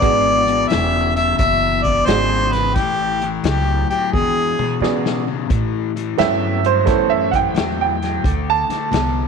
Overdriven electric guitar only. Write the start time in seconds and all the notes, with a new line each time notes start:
0.01 E2 B2
0.47 E2 B2
0.70 E2 C#3
1.16 E2 C#3
1.40 E2 B2
1.86 E2 B2
2.08 E2 C#3
2.54 E2 C#3
2.77 A2 E3
3.23 A2 E3
3.45 A2 F#3
3.91 A2 F#3
4.13 E2 B2
4.59 E2 B2
4.81 E2 C#3
5.27 E2 C#3
5.49 A2 E3
5.96 A2 E3
6.18 A2 F#3
6.64 A2 F#3
6.86 A2 E3
7.33 A2 E3
7.56 A2 F#3
8.02 A2 F#3
8.24 D3 A3
8.70 D3 A3
8.91 D3 B3